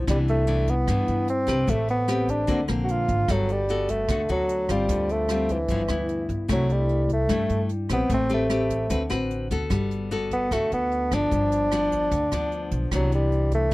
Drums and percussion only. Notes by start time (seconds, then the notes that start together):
0.07 kick, cross-stick, closed hi-hat
0.28 closed hi-hat
0.47 closed hi-hat
0.67 kick, closed hi-hat
0.88 kick, cross-stick, closed hi-hat
1.08 closed hi-hat
1.28 closed hi-hat
1.48 kick, cross-stick, closed hi-hat
1.68 kick, closed hi-hat
1.88 closed hi-hat
2.08 cross-stick, closed hi-hat
2.28 kick, closed hi-hat
2.48 kick, closed hi-hat
2.68 cross-stick, closed hi-hat
2.88 closed hi-hat
3.08 kick, closed hi-hat
3.28 kick, cross-stick, closed hi-hat
3.49 closed hi-hat
3.68 closed hi-hat
3.88 kick, closed hi-hat
4.08 kick, cross-stick, closed hi-hat
4.28 closed hi-hat
4.49 closed hi-hat
4.69 kick, cross-stick, closed hi-hat
4.89 kick, closed hi-hat
5.09 closed hi-hat
5.29 cross-stick, closed hi-hat
5.49 kick, closed hi-hat
5.68 kick, closed hi-hat
5.88 cross-stick, closed hi-hat
6.09 closed hi-hat
6.29 kick, closed hi-hat
6.49 kick, cross-stick, closed hi-hat
6.69 closed hi-hat
6.89 closed hi-hat
7.09 kick, closed hi-hat
7.29 kick, cross-stick, closed hi-hat
7.49 closed hi-hat
7.69 closed hi-hat
7.89 kick, cross-stick, closed hi-hat
8.09 kick, closed hi-hat
8.29 closed hi-hat
8.50 cross-stick, closed hi-hat
8.70 kick, closed hi-hat
8.90 kick, closed hi-hat
9.11 cross-stick, closed hi-hat
9.31 closed hi-hat
9.50 kick, closed hi-hat
9.70 kick, cross-stick, closed hi-hat
9.91 closed hi-hat
10.11 closed hi-hat
10.31 kick, closed hi-hat
10.51 kick, cross-stick, closed hi-hat
10.71 closed hi-hat
10.91 closed hi-hat
11.11 kick, cross-stick, closed hi-hat
11.31 kick, closed hi-hat
11.52 closed hi-hat
11.71 cross-stick, closed hi-hat
11.92 kick, closed hi-hat
12.11 kick, closed hi-hat
12.31 cross-stick, closed hi-hat
12.52 closed hi-hat
12.71 kick, closed hi-hat
12.91 kick, cross-stick, closed hi-hat
13.12 closed hi-hat
13.32 closed hi-hat
13.51 kick, closed hi-hat